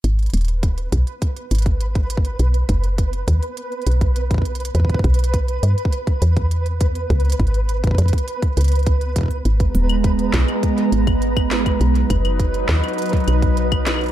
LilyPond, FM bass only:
\new Staff \with { instrumentName = "FM bass" } { \clef bass \time 4/4 \key gis \minor \tempo 4 = 102 gis,,8 dis,,4 b,,8 r8 gis,,4. | b,,8 fis,,4 dis,8 r8 b,,4. | e,8 b,,4 g,8 r8 e,4. | cis,8 gis,,4 eis,8 r8 cis,4. |
gis,,8 dis,,4 b,,8 r8 gis,,4. | b,,8 fis,,4 dis,8 r8 b,,4. | }